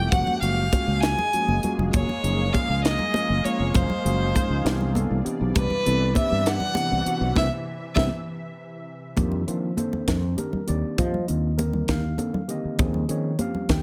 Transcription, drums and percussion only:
0.12 kick loud
0.12 closed hi-hat medium
0.12 high conga medium
0.27 low conga medium
0.43 closed hi-hat medium
0.73 kick medium
0.73 closed hi-hat medium
0.73 high conga medium
1.03 snare loud
1.03 closed hi-hat medium
1.19 low conga medium
1.33 closed hi-hat medium
1.33 high conga soft
1.48 high conga medium
1.63 closed hi-hat medium
1.63 low conga medium
1.79 low conga medium
1.93 kick loud
1.93 closed hi-hat medium
1.93 high conga medium
2.09 low conga medium
2.24 closed hi-hat medium
2.24 low conga soft
2.54 kick medium
2.54 closed hi-hat medium
2.54 high conga medium
2.84 snare loud
2.84 closed hi-hat medium
2.84 low conga soft
2.99 low conga medium
3.14 closed hi-hat medium
3.14 high conga medium
3.45 closed hi-hat medium
3.74 kick loud
3.74 closed hi-hat medium
3.74 high conga medium
3.90 low conga medium
4.06 closed hi-hat medium
4.06 low conga soft
4.35 kick medium
4.35 closed hi-hat medium
4.35 high conga medium
4.66 snare loud
4.66 closed hi-hat medium
4.66 low conga soft
4.81 low conga medium
4.95 closed hi-hat medium
4.95 high conga medium
5.26 closed hi-hat medium
5.55 kick loud
5.55 closed hi-hat medium
5.55 high conga medium
5.70 low conga medium
5.85 closed hi-hat medium
5.85 low conga soft
6.15 kick medium
6.15 closed hi-hat medium
6.15 high conga medium
6.46 snare loud
6.46 closed hi-hat medium
6.46 low conga soft
6.60 low conga medium
6.75 closed hi-hat medium
6.75 high conga loud
7.06 closed hi-hat medium
7.35 kick medium
7.35 snare medium
7.35 high conga medium
7.96 kick medium
7.96 snare medium
7.96 high conga medium
9.17 kick medium
9.17 closed hi-hat medium
9.17 high conga medium
9.17 low conga soft
9.32 low conga medium
9.48 closed hi-hat medium
9.77 closed hi-hat medium
9.77 high conga medium
9.93 low conga medium
10.08 kick medium
10.08 snare loud
10.08 closed hi-hat medium
10.38 closed hi-hat medium
10.38 high conga medium
10.53 low conga medium
10.68 closed hi-hat medium
10.98 kick loud
10.98 closed hi-hat medium
10.98 high conga medium
10.98 low conga soft
11.14 low conga medium
11.28 closed hi-hat medium
11.59 closed hi-hat medium
11.59 high conga medium
11.73 low conga medium
11.88 kick medium
11.88 snare loud
11.88 closed hi-hat medium
12.18 closed hi-hat medium
12.18 high conga medium
12.34 low conga medium
12.49 closed hi-hat medium
12.79 kick loud
12.79 closed hi-hat medium
12.79 high conga medium
12.79 low conga soft
12.94 low conga medium
13.09 closed hi-hat medium
13.39 closed hi-hat medium
13.39 high conga medium
13.55 low conga medium
13.69 kick medium
13.69 snare loud
13.69 closed hi-hat medium

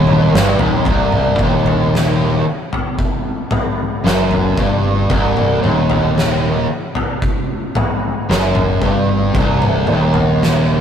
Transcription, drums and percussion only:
0.07 mid tom medium
0.35 snare loud
0.59 floor tom loud
0.85 kick loud
0.85 floor tom medium
1.12 mid tom medium
1.39 kick medium
1.39 mid tom medium
1.66 floor tom loud
1.95 snare medium
2.73 floor tom medium
2.99 kick medium
3.51 floor tom medium
3.51 mid tom medium
4.07 snare medium
4.31 floor tom medium
4.58 kick loud
5.10 kick loud
5.10 floor tom medium
5.37 mid tom medium
5.64 mid tom medium
5.90 floor tom medium
6.18 snare medium
6.95 floor tom medium
7.22 kick medium
7.75 floor tom medium
7.75 mid tom medium
8.31 snare medium
8.55 floor tom medium
8.55 mid tom medium
8.82 kick loud
9.35 kick loud
9.35 floor tom medium
9.62 mid tom medium
9.87 mid tom medium
10.14 floor tom medium
10.43 snare medium

